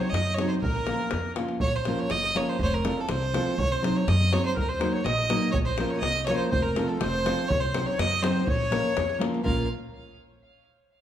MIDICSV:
0, 0, Header, 1, 6, 480
1, 0, Start_track
1, 0, Key_signature, -5, "minor"
1, 0, Tempo, 490196
1, 615, Time_signature, 2, 2, 24, 8
1, 10782, End_track
2, 0, Start_track
2, 0, Title_t, "Fiddle"
2, 0, Program_c, 0, 110
2, 0, Note_on_c, 0, 73, 78
2, 91, Note_on_c, 0, 75, 102
2, 105, Note_off_c, 0, 73, 0
2, 335, Note_on_c, 0, 73, 90
2, 349, Note_off_c, 0, 75, 0
2, 466, Note_off_c, 0, 73, 0
2, 472, Note_on_c, 0, 72, 79
2, 531, Note_off_c, 0, 72, 0
2, 590, Note_on_c, 0, 70, 94
2, 1287, Note_off_c, 0, 70, 0
2, 1577, Note_on_c, 0, 73, 114
2, 1719, Note_on_c, 0, 72, 90
2, 1733, Note_off_c, 0, 73, 0
2, 1957, Note_on_c, 0, 73, 106
2, 1971, Note_off_c, 0, 72, 0
2, 2065, Note_on_c, 0, 75, 122
2, 2080, Note_off_c, 0, 73, 0
2, 2321, Note_on_c, 0, 73, 107
2, 2335, Note_off_c, 0, 75, 0
2, 2441, Note_on_c, 0, 72, 88
2, 2456, Note_off_c, 0, 73, 0
2, 2552, Note_off_c, 0, 72, 0
2, 2565, Note_on_c, 0, 72, 120
2, 2577, Note_on_c, 0, 73, 91
2, 2592, Note_off_c, 0, 72, 0
2, 2614, Note_on_c, 0, 72, 118
2, 2629, Note_off_c, 0, 73, 0
2, 2683, Note_on_c, 0, 70, 100
2, 2698, Note_off_c, 0, 72, 0
2, 2937, Note_on_c, 0, 69, 86
2, 2952, Note_off_c, 0, 70, 0
2, 3033, Note_on_c, 0, 72, 108
2, 3047, Note_off_c, 0, 69, 0
2, 3510, Note_on_c, 0, 73, 127
2, 3525, Note_off_c, 0, 72, 0
2, 3641, Note_on_c, 0, 72, 93
2, 3656, Note_off_c, 0, 73, 0
2, 3879, Note_on_c, 0, 73, 95
2, 3894, Note_off_c, 0, 72, 0
2, 3997, Note_on_c, 0, 75, 110
2, 4012, Note_off_c, 0, 73, 0
2, 4244, Note_on_c, 0, 73, 107
2, 4259, Note_off_c, 0, 75, 0
2, 4356, Note_off_c, 0, 73, 0
2, 4363, Note_on_c, 0, 72, 88
2, 4467, Note_off_c, 0, 72, 0
2, 4487, Note_on_c, 0, 70, 98
2, 4593, Note_on_c, 0, 72, 88
2, 4608, Note_off_c, 0, 70, 0
2, 4825, Note_on_c, 0, 73, 86
2, 4840, Note_off_c, 0, 72, 0
2, 4938, Note_on_c, 0, 75, 104
2, 4953, Note_off_c, 0, 73, 0
2, 5396, Note_off_c, 0, 75, 0
2, 5402, Note_on_c, 0, 73, 113
2, 5462, Note_off_c, 0, 73, 0
2, 5538, Note_on_c, 0, 72, 82
2, 5779, Note_on_c, 0, 73, 81
2, 5794, Note_off_c, 0, 72, 0
2, 5861, Note_off_c, 0, 73, 0
2, 5867, Note_on_c, 0, 75, 104
2, 6109, Note_off_c, 0, 75, 0
2, 6134, Note_on_c, 0, 73, 98
2, 6222, Note_off_c, 0, 73, 0
2, 6228, Note_on_c, 0, 72, 80
2, 6353, Note_off_c, 0, 72, 0
2, 6359, Note_on_c, 0, 72, 110
2, 6486, Note_on_c, 0, 70, 91
2, 6501, Note_off_c, 0, 72, 0
2, 6729, Note_on_c, 0, 69, 66
2, 6744, Note_off_c, 0, 70, 0
2, 6833, Note_off_c, 0, 69, 0
2, 6839, Note_on_c, 0, 72, 112
2, 7325, Note_on_c, 0, 73, 107
2, 7340, Note_off_c, 0, 72, 0
2, 7446, Note_on_c, 0, 72, 97
2, 7461, Note_off_c, 0, 73, 0
2, 7698, Note_on_c, 0, 73, 92
2, 7712, Note_off_c, 0, 72, 0
2, 7825, Note_on_c, 0, 75, 113
2, 7840, Note_off_c, 0, 73, 0
2, 8055, Note_on_c, 0, 72, 96
2, 8069, Note_off_c, 0, 75, 0
2, 8297, Note_off_c, 0, 72, 0
2, 8302, Note_on_c, 0, 73, 108
2, 8979, Note_off_c, 0, 73, 0
2, 9245, Note_on_c, 0, 77, 80
2, 9473, Note_off_c, 0, 77, 0
2, 10782, End_track
3, 0, Start_track
3, 0, Title_t, "Accordion"
3, 0, Program_c, 1, 21
3, 1, Note_on_c, 1, 73, 71
3, 124, Note_on_c, 1, 75, 80
3, 127, Note_off_c, 1, 73, 0
3, 369, Note_off_c, 1, 75, 0
3, 382, Note_on_c, 1, 73, 74
3, 487, Note_on_c, 1, 72, 57
3, 499, Note_off_c, 1, 73, 0
3, 543, Note_off_c, 1, 72, 0
3, 611, Note_on_c, 1, 70, 77
3, 1298, Note_off_c, 1, 70, 0
3, 4458, Note_on_c, 1, 70, 79
3, 4574, Note_off_c, 1, 70, 0
3, 4575, Note_on_c, 1, 72, 68
3, 4816, Note_on_c, 1, 73, 67
3, 4821, Note_off_c, 1, 72, 0
3, 4940, Note_on_c, 1, 75, 75
3, 4942, Note_off_c, 1, 73, 0
3, 5409, Note_on_c, 1, 73, 78
3, 5424, Note_off_c, 1, 75, 0
3, 5467, Note_off_c, 1, 73, 0
3, 5539, Note_on_c, 1, 72, 65
3, 5766, Note_off_c, 1, 72, 0
3, 5791, Note_on_c, 1, 73, 70
3, 5897, Note_on_c, 1, 75, 76
3, 5909, Note_off_c, 1, 73, 0
3, 6125, Note_off_c, 1, 75, 0
3, 6156, Note_on_c, 1, 73, 86
3, 6263, Note_off_c, 1, 73, 0
3, 6264, Note_on_c, 1, 72, 73
3, 6361, Note_off_c, 1, 72, 0
3, 6376, Note_on_c, 1, 72, 88
3, 6493, Note_off_c, 1, 72, 0
3, 6495, Note_on_c, 1, 70, 74
3, 6740, Note_off_c, 1, 70, 0
3, 6750, Note_on_c, 1, 69, 58
3, 6868, Note_off_c, 1, 69, 0
3, 6868, Note_on_c, 1, 72, 77
3, 7312, Note_off_c, 1, 72, 0
3, 7348, Note_on_c, 1, 73, 89
3, 7466, Note_off_c, 1, 73, 0
3, 7469, Note_on_c, 1, 72, 76
3, 7706, Note_off_c, 1, 72, 0
3, 7715, Note_on_c, 1, 73, 79
3, 7820, Note_on_c, 1, 75, 82
3, 7829, Note_off_c, 1, 73, 0
3, 8060, Note_off_c, 1, 75, 0
3, 8065, Note_on_c, 1, 72, 84
3, 8303, Note_off_c, 1, 72, 0
3, 8307, Note_on_c, 1, 73, 88
3, 8982, Note_off_c, 1, 73, 0
3, 9244, Note_on_c, 1, 65, 65
3, 9472, Note_off_c, 1, 65, 0
3, 10782, End_track
4, 0, Start_track
4, 0, Title_t, "Nylon-string guitar"
4, 0, Program_c, 2, 24
4, 362, Note_on_c, 2, 54, 58
4, 368, Note_on_c, 2, 60, 57
4, 373, Note_on_c, 2, 63, 54
4, 383, Note_on_c, 2, 66, 67
4, 566, Note_off_c, 2, 54, 0
4, 570, Note_off_c, 2, 60, 0
4, 570, Note_off_c, 2, 63, 0
4, 577, Note_off_c, 2, 66, 0
4, 843, Note_on_c, 2, 53, 58
4, 849, Note_on_c, 2, 58, 53
4, 856, Note_on_c, 2, 61, 55
4, 867, Note_on_c, 2, 65, 64
4, 1048, Note_off_c, 2, 53, 0
4, 1051, Note_off_c, 2, 58, 0
4, 1054, Note_off_c, 2, 61, 0
4, 1060, Note_off_c, 2, 65, 0
4, 1326, Note_on_c, 2, 53, 70
4, 1331, Note_on_c, 2, 58, 63
4, 1340, Note_on_c, 2, 61, 66
4, 1342, Note_on_c, 2, 65, 87
4, 1530, Note_off_c, 2, 53, 0
4, 1533, Note_off_c, 2, 58, 0
4, 1537, Note_off_c, 2, 65, 0
4, 1538, Note_off_c, 2, 61, 0
4, 1827, Note_on_c, 2, 53, 58
4, 1835, Note_on_c, 2, 58, 58
4, 1840, Note_on_c, 2, 61, 59
4, 1840, Note_on_c, 2, 65, 55
4, 1848, Note_on_c, 2, 70, 68
4, 2022, Note_off_c, 2, 53, 0
4, 2027, Note_off_c, 2, 58, 0
4, 2027, Note_off_c, 2, 65, 0
4, 2029, Note_off_c, 2, 61, 0
4, 2031, Note_off_c, 2, 70, 0
4, 2297, Note_on_c, 2, 53, 61
4, 2304, Note_on_c, 2, 61, 59
4, 2305, Note_on_c, 2, 58, 62
4, 2310, Note_on_c, 2, 65, 67
4, 2314, Note_on_c, 2, 70, 69
4, 2498, Note_off_c, 2, 53, 0
4, 2501, Note_off_c, 2, 61, 0
4, 2502, Note_off_c, 2, 58, 0
4, 2504, Note_off_c, 2, 65, 0
4, 2506, Note_off_c, 2, 70, 0
4, 2778, Note_on_c, 2, 53, 60
4, 2784, Note_on_c, 2, 57, 64
4, 2788, Note_on_c, 2, 60, 63
4, 2793, Note_on_c, 2, 65, 59
4, 2800, Note_on_c, 2, 69, 69
4, 2979, Note_off_c, 2, 53, 0
4, 2982, Note_off_c, 2, 57, 0
4, 2984, Note_off_c, 2, 60, 0
4, 2986, Note_off_c, 2, 65, 0
4, 2990, Note_off_c, 2, 69, 0
4, 3263, Note_on_c, 2, 53, 64
4, 3270, Note_on_c, 2, 57, 57
4, 3275, Note_on_c, 2, 60, 57
4, 3283, Note_on_c, 2, 65, 64
4, 3288, Note_on_c, 2, 69, 74
4, 3462, Note_off_c, 2, 53, 0
4, 3466, Note_off_c, 2, 57, 0
4, 3466, Note_off_c, 2, 60, 0
4, 3472, Note_off_c, 2, 65, 0
4, 3474, Note_off_c, 2, 69, 0
4, 3741, Note_on_c, 2, 54, 67
4, 3741, Note_on_c, 2, 60, 55
4, 3747, Note_on_c, 2, 63, 59
4, 3752, Note_on_c, 2, 72, 75
4, 3753, Note_on_c, 2, 66, 62
4, 3941, Note_off_c, 2, 54, 0
4, 3941, Note_off_c, 2, 60, 0
4, 3944, Note_off_c, 2, 63, 0
4, 3946, Note_off_c, 2, 72, 0
4, 3947, Note_off_c, 2, 66, 0
4, 4225, Note_on_c, 2, 54, 73
4, 4228, Note_on_c, 2, 60, 69
4, 4231, Note_on_c, 2, 63, 63
4, 4238, Note_on_c, 2, 66, 56
4, 4244, Note_on_c, 2, 72, 72
4, 4424, Note_off_c, 2, 54, 0
4, 4424, Note_off_c, 2, 60, 0
4, 4426, Note_off_c, 2, 63, 0
4, 4431, Note_off_c, 2, 66, 0
4, 4431, Note_off_c, 2, 72, 0
4, 4693, Note_on_c, 2, 54, 67
4, 4697, Note_on_c, 2, 58, 65
4, 4703, Note_on_c, 2, 63, 59
4, 4709, Note_on_c, 2, 66, 58
4, 4717, Note_on_c, 2, 70, 64
4, 4897, Note_off_c, 2, 54, 0
4, 4900, Note_off_c, 2, 58, 0
4, 4902, Note_off_c, 2, 63, 0
4, 4906, Note_off_c, 2, 66, 0
4, 4908, Note_off_c, 2, 70, 0
4, 5183, Note_on_c, 2, 54, 68
4, 5189, Note_on_c, 2, 58, 67
4, 5196, Note_on_c, 2, 63, 60
4, 5197, Note_on_c, 2, 66, 61
4, 5202, Note_on_c, 2, 70, 81
4, 5382, Note_off_c, 2, 54, 0
4, 5385, Note_off_c, 2, 58, 0
4, 5388, Note_off_c, 2, 66, 0
4, 5389, Note_off_c, 2, 63, 0
4, 5392, Note_off_c, 2, 70, 0
4, 5663, Note_on_c, 2, 53, 60
4, 5675, Note_on_c, 2, 58, 51
4, 5679, Note_on_c, 2, 61, 60
4, 5685, Note_on_c, 2, 65, 59
4, 5687, Note_on_c, 2, 70, 73
4, 5862, Note_off_c, 2, 53, 0
4, 5868, Note_off_c, 2, 58, 0
4, 5871, Note_off_c, 2, 61, 0
4, 5871, Note_off_c, 2, 65, 0
4, 5874, Note_off_c, 2, 70, 0
4, 6147, Note_on_c, 2, 53, 66
4, 6153, Note_on_c, 2, 58, 63
4, 6160, Note_on_c, 2, 61, 61
4, 6166, Note_on_c, 2, 65, 59
4, 6171, Note_on_c, 2, 70, 76
4, 6344, Note_off_c, 2, 53, 0
4, 6346, Note_off_c, 2, 58, 0
4, 6350, Note_off_c, 2, 61, 0
4, 6353, Note_off_c, 2, 65, 0
4, 6356, Note_off_c, 2, 70, 0
4, 6619, Note_on_c, 2, 53, 72
4, 6624, Note_on_c, 2, 57, 64
4, 6629, Note_on_c, 2, 60, 62
4, 6633, Note_on_c, 2, 65, 60
4, 6635, Note_on_c, 2, 69, 72
4, 6819, Note_off_c, 2, 53, 0
4, 6822, Note_off_c, 2, 57, 0
4, 6825, Note_off_c, 2, 60, 0
4, 6826, Note_off_c, 2, 65, 0
4, 6826, Note_off_c, 2, 69, 0
4, 7098, Note_on_c, 2, 53, 67
4, 7104, Note_on_c, 2, 57, 62
4, 7110, Note_on_c, 2, 60, 60
4, 7112, Note_on_c, 2, 65, 64
4, 7116, Note_on_c, 2, 69, 70
4, 7298, Note_off_c, 2, 53, 0
4, 7302, Note_off_c, 2, 57, 0
4, 7303, Note_off_c, 2, 60, 0
4, 7305, Note_off_c, 2, 65, 0
4, 7306, Note_off_c, 2, 69, 0
4, 7582, Note_on_c, 2, 54, 61
4, 7584, Note_on_c, 2, 60, 61
4, 7589, Note_on_c, 2, 66, 64
4, 7590, Note_on_c, 2, 63, 60
4, 7592, Note_on_c, 2, 72, 71
4, 7780, Note_off_c, 2, 54, 0
4, 7780, Note_off_c, 2, 60, 0
4, 7781, Note_off_c, 2, 63, 0
4, 7783, Note_off_c, 2, 66, 0
4, 7784, Note_off_c, 2, 72, 0
4, 8048, Note_on_c, 2, 54, 68
4, 8054, Note_on_c, 2, 60, 63
4, 8061, Note_on_c, 2, 63, 61
4, 8065, Note_on_c, 2, 66, 66
4, 8069, Note_on_c, 2, 72, 80
4, 8251, Note_off_c, 2, 54, 0
4, 8255, Note_off_c, 2, 60, 0
4, 8257, Note_off_c, 2, 63, 0
4, 8260, Note_off_c, 2, 66, 0
4, 8260, Note_off_c, 2, 72, 0
4, 8525, Note_on_c, 2, 53, 55
4, 8527, Note_on_c, 2, 58, 60
4, 8530, Note_on_c, 2, 61, 61
4, 8538, Note_on_c, 2, 65, 55
4, 8543, Note_on_c, 2, 70, 74
4, 8728, Note_off_c, 2, 58, 0
4, 8730, Note_off_c, 2, 53, 0
4, 8731, Note_off_c, 2, 61, 0
4, 8736, Note_off_c, 2, 65, 0
4, 8736, Note_off_c, 2, 70, 0
4, 8993, Note_on_c, 2, 53, 85
4, 9000, Note_on_c, 2, 61, 76
4, 9005, Note_on_c, 2, 58, 69
4, 9010, Note_on_c, 2, 65, 69
4, 9015, Note_on_c, 2, 70, 74
4, 9203, Note_off_c, 2, 53, 0
4, 9204, Note_off_c, 2, 61, 0
4, 9208, Note_off_c, 2, 58, 0
4, 9210, Note_off_c, 2, 65, 0
4, 9213, Note_off_c, 2, 70, 0
4, 9240, Note_on_c, 2, 58, 77
4, 9246, Note_on_c, 2, 65, 68
4, 9247, Note_on_c, 2, 61, 73
4, 9248, Note_on_c, 2, 70, 95
4, 9471, Note_off_c, 2, 58, 0
4, 9471, Note_off_c, 2, 70, 0
4, 9473, Note_off_c, 2, 61, 0
4, 9473, Note_off_c, 2, 65, 0
4, 10782, End_track
5, 0, Start_track
5, 0, Title_t, "Upright bass"
5, 0, Program_c, 3, 32
5, 122, Note_on_c, 3, 42, 94
5, 415, Note_off_c, 3, 42, 0
5, 611, Note_on_c, 3, 34, 85
5, 902, Note_off_c, 3, 34, 0
5, 1102, Note_on_c, 3, 41, 81
5, 1390, Note_off_c, 3, 41, 0
5, 1583, Note_on_c, 3, 34, 85
5, 1871, Note_off_c, 3, 34, 0
5, 2068, Note_on_c, 3, 30, 87
5, 2355, Note_off_c, 3, 30, 0
5, 2538, Note_on_c, 3, 29, 99
5, 2829, Note_off_c, 3, 29, 0
5, 3029, Note_on_c, 3, 36, 100
5, 3317, Note_off_c, 3, 36, 0
5, 3503, Note_on_c, 3, 36, 93
5, 3793, Note_off_c, 3, 36, 0
5, 3993, Note_on_c, 3, 42, 105
5, 4279, Note_off_c, 3, 42, 0
5, 4473, Note_on_c, 3, 39, 77
5, 4759, Note_off_c, 3, 39, 0
5, 4942, Note_on_c, 3, 34, 89
5, 5232, Note_off_c, 3, 34, 0
5, 5424, Note_on_c, 3, 34, 78
5, 5713, Note_off_c, 3, 34, 0
5, 5895, Note_on_c, 3, 36, 81
5, 6186, Note_off_c, 3, 36, 0
5, 6391, Note_on_c, 3, 29, 100
5, 6677, Note_off_c, 3, 29, 0
5, 6866, Note_on_c, 3, 29, 88
5, 7153, Note_off_c, 3, 29, 0
5, 7355, Note_on_c, 3, 36, 99
5, 7639, Note_off_c, 3, 36, 0
5, 7823, Note_on_c, 3, 42, 93
5, 8110, Note_off_c, 3, 42, 0
5, 8307, Note_on_c, 3, 34, 91
5, 8592, Note_off_c, 3, 34, 0
5, 8786, Note_on_c, 3, 41, 79
5, 9071, Note_off_c, 3, 41, 0
5, 9264, Note_on_c, 3, 34, 86
5, 9483, Note_off_c, 3, 34, 0
5, 10782, End_track
6, 0, Start_track
6, 0, Title_t, "Davul"
6, 10, Note_on_c, 9, 37, 25
6, 108, Note_off_c, 9, 37, 0
6, 139, Note_on_c, 9, 37, 75
6, 237, Note_off_c, 9, 37, 0
6, 261, Note_on_c, 9, 37, 24
6, 359, Note_off_c, 9, 37, 0
6, 377, Note_on_c, 9, 37, 71
6, 475, Note_off_c, 9, 37, 0
6, 625, Note_on_c, 9, 43, 96
6, 723, Note_off_c, 9, 43, 0
6, 745, Note_on_c, 9, 37, 26
6, 843, Note_off_c, 9, 37, 0
6, 848, Note_on_c, 9, 37, 64
6, 946, Note_off_c, 9, 37, 0
6, 973, Note_on_c, 9, 37, 29
6, 1071, Note_off_c, 9, 37, 0
6, 1084, Note_on_c, 9, 37, 77
6, 1182, Note_off_c, 9, 37, 0
6, 1332, Note_on_c, 9, 37, 69
6, 1430, Note_off_c, 9, 37, 0
6, 1454, Note_on_c, 9, 37, 29
6, 1552, Note_off_c, 9, 37, 0
6, 1567, Note_on_c, 9, 43, 89
6, 1664, Note_off_c, 9, 43, 0
6, 1815, Note_on_c, 9, 37, 64
6, 1913, Note_off_c, 9, 37, 0
6, 1946, Note_on_c, 9, 37, 26
6, 2044, Note_off_c, 9, 37, 0
6, 2055, Note_on_c, 9, 37, 67
6, 2153, Note_off_c, 9, 37, 0
6, 2187, Note_on_c, 9, 37, 25
6, 2285, Note_off_c, 9, 37, 0
6, 2311, Note_on_c, 9, 37, 66
6, 2409, Note_off_c, 9, 37, 0
6, 2542, Note_on_c, 9, 43, 86
6, 2640, Note_off_c, 9, 43, 0
6, 2788, Note_on_c, 9, 37, 69
6, 2886, Note_off_c, 9, 37, 0
6, 2914, Note_on_c, 9, 37, 24
6, 3012, Note_off_c, 9, 37, 0
6, 3022, Note_on_c, 9, 37, 75
6, 3120, Note_off_c, 9, 37, 0
6, 3154, Note_on_c, 9, 37, 29
6, 3251, Note_off_c, 9, 37, 0
6, 3274, Note_on_c, 9, 37, 76
6, 3372, Note_off_c, 9, 37, 0
6, 3521, Note_on_c, 9, 43, 97
6, 3619, Note_off_c, 9, 43, 0
6, 3763, Note_on_c, 9, 37, 67
6, 3861, Note_off_c, 9, 37, 0
6, 3879, Note_on_c, 9, 37, 27
6, 3977, Note_off_c, 9, 37, 0
6, 3995, Note_on_c, 9, 37, 69
6, 4093, Note_off_c, 9, 37, 0
6, 4117, Note_on_c, 9, 37, 27
6, 4215, Note_off_c, 9, 37, 0
6, 4236, Note_on_c, 9, 37, 70
6, 4334, Note_off_c, 9, 37, 0
6, 4475, Note_on_c, 9, 43, 88
6, 4573, Note_off_c, 9, 43, 0
6, 4603, Note_on_c, 9, 37, 26
6, 4701, Note_off_c, 9, 37, 0
6, 4709, Note_on_c, 9, 37, 69
6, 4807, Note_off_c, 9, 37, 0
6, 4953, Note_on_c, 9, 37, 69
6, 5051, Note_off_c, 9, 37, 0
6, 5076, Note_on_c, 9, 37, 31
6, 5174, Note_off_c, 9, 37, 0
6, 5189, Note_on_c, 9, 37, 80
6, 5287, Note_off_c, 9, 37, 0
6, 5312, Note_on_c, 9, 37, 31
6, 5410, Note_off_c, 9, 37, 0
6, 5423, Note_on_c, 9, 43, 113
6, 5521, Note_off_c, 9, 43, 0
6, 5657, Note_on_c, 9, 37, 72
6, 5755, Note_off_c, 9, 37, 0
6, 5782, Note_on_c, 9, 37, 30
6, 5880, Note_off_c, 9, 37, 0
6, 5904, Note_on_c, 9, 37, 72
6, 6002, Note_off_c, 9, 37, 0
6, 6026, Note_on_c, 9, 37, 26
6, 6124, Note_off_c, 9, 37, 0
6, 6139, Note_on_c, 9, 37, 70
6, 6237, Note_off_c, 9, 37, 0
6, 6388, Note_on_c, 9, 43, 106
6, 6486, Note_off_c, 9, 43, 0
6, 6623, Note_on_c, 9, 37, 74
6, 6721, Note_off_c, 9, 37, 0
6, 6750, Note_on_c, 9, 37, 28
6, 6848, Note_off_c, 9, 37, 0
6, 6862, Note_on_c, 9, 37, 81
6, 6960, Note_off_c, 9, 37, 0
6, 6991, Note_on_c, 9, 37, 28
6, 7088, Note_off_c, 9, 37, 0
6, 7110, Note_on_c, 9, 37, 78
6, 7208, Note_off_c, 9, 37, 0
6, 7347, Note_on_c, 9, 43, 109
6, 7445, Note_off_c, 9, 43, 0
6, 7584, Note_on_c, 9, 37, 78
6, 7682, Note_off_c, 9, 37, 0
6, 7712, Note_on_c, 9, 37, 27
6, 7810, Note_off_c, 9, 37, 0
6, 7827, Note_on_c, 9, 37, 85
6, 7925, Note_off_c, 9, 37, 0
6, 7948, Note_on_c, 9, 37, 27
6, 8046, Note_off_c, 9, 37, 0
6, 8066, Note_on_c, 9, 37, 83
6, 8164, Note_off_c, 9, 37, 0
6, 8296, Note_on_c, 9, 43, 103
6, 8394, Note_off_c, 9, 43, 0
6, 8540, Note_on_c, 9, 37, 76
6, 8638, Note_off_c, 9, 37, 0
6, 8781, Note_on_c, 9, 37, 74
6, 8879, Note_off_c, 9, 37, 0
6, 8905, Note_on_c, 9, 37, 27
6, 9002, Note_off_c, 9, 37, 0
6, 9023, Note_on_c, 9, 37, 74
6, 9121, Note_off_c, 9, 37, 0
6, 9149, Note_on_c, 9, 37, 25
6, 9247, Note_off_c, 9, 37, 0
6, 9264, Note_on_c, 9, 43, 89
6, 9361, Note_off_c, 9, 43, 0
6, 10782, End_track
0, 0, End_of_file